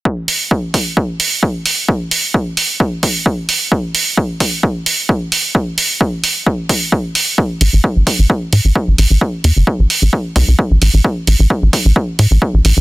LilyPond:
<<
  \new Staff \with { instrumentName = "Analog synth bass" } { \clef bass \time 4/4 \key a \minor \tempo 4 = 131 r1 | r1 | r1 | r1 |
r8 a,,16 a,,16 r16 a,,16 r16 a,,16 r8 a,16 a,,16 r16 a,,16 a,,16 a,,16 | r8 e,16 g,,16 r16 a,,16 r16 a,,16 r8 c,16 c,16 r16 a,,16 a,,16 a,,16 | r8 a,,16 a,,16 r16 a,,16 r16 a,,16 r8 a,16 a,,16 r16 a,,16 a,,16 a,,16 | }
  \new DrumStaff \with { instrumentName = "Drums" } \drummode { \time 4/4 bd8 hho8 bd8 <hho bd>8 bd8 hho8 bd8 hho8 | bd8 hho8 bd8 hho8 bd8 <hho bd>8 bd8 hho8 | bd8 hho8 bd8 <hho bd>8 bd8 hho8 bd8 hho8 | bd8 hho8 bd8 hho8 bd8 <hho bd>8 bd8 hho8 |
bd8 hho8 bd8 <hho bd>8 bd8 hho8 bd8 hho8 | bd8 hho8 bd8 hho8 bd8 <hho bd>8 bd8 hho8 | bd8 hho8 bd8 <hho bd>8 bd8 hho8 bd8 hho8 | }
>>